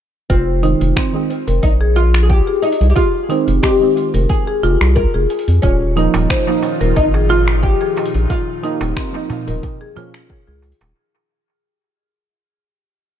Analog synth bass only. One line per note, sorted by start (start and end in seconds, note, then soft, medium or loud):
0.30 0.75 F1 medium
0.81 0.93 F1 loud
1.48 1.60 F1 medium
1.63 2.41 A#1 medium
2.81 2.93 C2 medium
3.48 3.60 F1 loud
4.14 4.27 F1 loud
4.63 4.77 F1 medium
4.81 5.06 C2 medium
5.15 5.27 F1 loud
5.48 5.60 F2 medium
5.63 6.08 D#1 loud
6.15 6.27 D#1 loud
6.81 6.93 D#1 loud
6.97 7.75 G#1 medium
8.15 8.27 A#1 loud
8.81 8.93 D#1 loud
9.48 9.60 D#1 loud
10.48 10.73 C#2 medium
10.81 10.93 D#1 medium